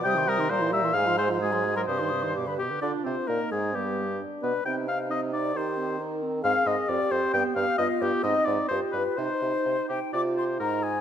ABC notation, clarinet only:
X:1
M:2/4
L:1/16
Q:1/4=132
K:Cm
V:1 name="Clarinet"
G E G E G =E G E | A F A F _G A G A | G E G E G =B G B | D2 C2 B,2 A,2 |
G,4 z2 =B,2 | C2 E2 C2 E2 | E2 C2 E2 C2 | C2 C2 C2 C2 |
=B,2 B,2 B,2 B,2 | C2 C2 F2 F2 | E2 E2 E2 E2 | F4 E4 |]